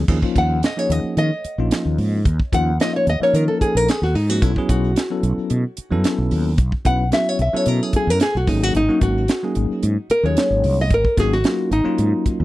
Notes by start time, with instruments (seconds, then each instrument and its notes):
0.08 fretless electric bass D#2, tine electric piano F3 A#3 C#4 D#4 G#4, kick, crash
0.22 tine electric piano F3 A#3 C#4 D#4 F4, kick
0.36 fretless electric bass D#2, nylon-string guitar F#5, kick, closed hi-hat
0.63 nylon-string guitar D#5, snare, closed hi-hat
0.77 tine electric piano F3 A#3 C#4 D#4 G#4, nylon-string guitar C#5
0.90 fretless electric bass D#2, nylon-string guitar D#5, closed hi-hat
1.04 muted fretless electric bass stroke
1.17 fretless electric bass D#3, nylon-string guitar D#5, closed hi-hat
1.44 muted fretless electric bass stroke, closed hi-hat
1.58 fretless electric bass A#1, tine electric piano F3 A#3 C#4 D#4 F4
1.71 snare, closed hi-hat
1.85 fretless electric bass D#2
1.98 fretless electric bass G#2, open hi-hat
2.25 fretless electric bass D#2, kick, closed hi-hat
2.40 kick
2.52 fretless electric bass D#2, tine electric piano F3 A#3 C#4 D#4 F4, nylon-string guitar F#5, kick, closed hi-hat
2.80 tine electric piano F3 A#3 C#4 D#4 F4, nylon-string guitar D#5, snare, closed hi-hat
2.96 nylon-string guitar C#5
3.07 fretless electric bass D#2, nylon-string guitar D#5, closed hi-hat
3.20 tine electric piano F3 A#3 C#4 D#4 A#4, nylon-string guitar C#5, muted fretless electric bass stroke, snare
3.33 fretless electric bass D#3, nylon-string guitar A#4, closed hi-hat
3.48 nylon-string guitar A4
3.61 nylon-string guitar G#4, muted fretless electric bass stroke, kick, closed hi-hat
3.75 fretless electric bass A#1, nylon-string guitar A#4
3.88 nylon-string guitar G#4, snare, closed hi-hat
4.02 fretless electric bass D#2, nylon-string guitar F#4, snare
4.15 fretless electric bass G#2, nylon-string guitar D#4, open hi-hat
4.29 tine electric piano F3 A#3 C#4 D#4 G#4, nylon-string guitar F#4
4.42 fretless electric bass B1, tine electric piano F#3 B3 C#4 E4 A4, nylon-string guitar E4, kick, closed hi-hat
4.56 tine electric piano F#3 B3 C#4 E4 G#4, kick
4.69 fretless electric bass B1, nylon-string guitar F#4, kick, closed hi-hat
4.96 snare, closed hi-hat
5.10 tine electric piano F#3 B3 C#4 E4 A4
5.23 fretless electric bass B1, closed hi-hat
5.38 muted fretless electric bass stroke
5.50 fretless electric bass B2, closed hi-hat
5.77 muted fretless electric bass stroke, closed hi-hat
5.91 fretless electric bass F#2, tine electric piano F#3 B3 C#4 E4 A4
6.04 snare, closed hi-hat
6.18 fretless electric bass B1
6.31 fretless electric bass D#2, open hi-hat
6.58 fretless electric bass B1, kick, closed hi-hat
6.72 kick
6.85 fretless electric bass B1, tine electric piano F#3 B3 C#4 E4 B4, nylon-string guitar F#5, kick, closed hi-hat
7.12 tine electric piano F#3 B3 C#4 E4 F#4, nylon-string guitar E5, snare, closed hi-hat
7.29 nylon-string guitar C#5
7.39 fretless electric bass B1, nylon-string guitar E5, closed hi-hat
7.53 tine electric piano F#3 B3 C#4 E4 A4, nylon-string guitar C#5, muted fretless electric bass stroke
7.66 fretless electric bass B2, nylon-string guitar A#4, closed hi-hat
7.83 nylon-string guitar G#4
7.93 nylon-string guitar G#4, muted fretless electric bass stroke, kick, closed hi-hat
8.07 fretless electric bass F#2, nylon-string guitar A#4
8.20 nylon-string guitar G#4, snare, closed hi-hat
8.35 fretless electric bass B1, nylon-string guitar F#4
8.47 fretless electric bass G#1, tine electric piano F#3 A#3 C#4 D#4 G#4, nylon-string guitar D#4, kick, open hi-hat
8.63 nylon-string guitar F#4
8.75 fretless electric bass G#1, nylon-string guitar D#4, closed hi-hat
8.88 tine electric piano F#3 A#3 C#4 D#4 F#4
9.01 fretless electric bass G#1, nylon-string guitar F#4, kick, closed hi-hat
9.28 snare, closed hi-hat
9.43 tine electric piano F#3 A#3 C#4 D#4 G#4
9.55 fretless electric bass G#1, closed hi-hat
9.83 fretless electric bass G#2, closed hi-hat
10.10 nylon-string guitar A#4, muted fretless electric bass stroke, closed hi-hat
10.23 fretless electric bass D#2, tine electric piano F#3 A#3 C#4 D#4 G#4, nylon-string guitar C#5
10.37 snare, closed hi-hat
10.50 fretless electric bass G#1
10.64 fretless electric bass C2, open hi-hat
10.81 nylon-string guitar D#5
10.90 fretless electric bass G#1, nylon-string guitar A#4, kick, closed hi-hat
11.05 kick
11.17 fretless electric bass G#1, tine electric piano F#3 A#3 C#4 D#4 F#4, nylon-string guitar G#4, kick, snare, closed hi-hat
11.33 nylon-string guitar F#4, snare
11.44 tine electric piano F#3 A#3 C#4 D#4 F4, snare, closed hi-hat
11.71 fretless electric bass G#1, nylon-string guitar D#4, closed hi-hat
11.84 tine electric piano F#3 A#3 C#4 D#4 F4, muted fretless electric bass stroke
11.98 fretless electric bass G#2, closed hi-hat
12.26 muted fretless electric bass stroke, kick, closed hi-hat
12.40 fretless electric bass D#2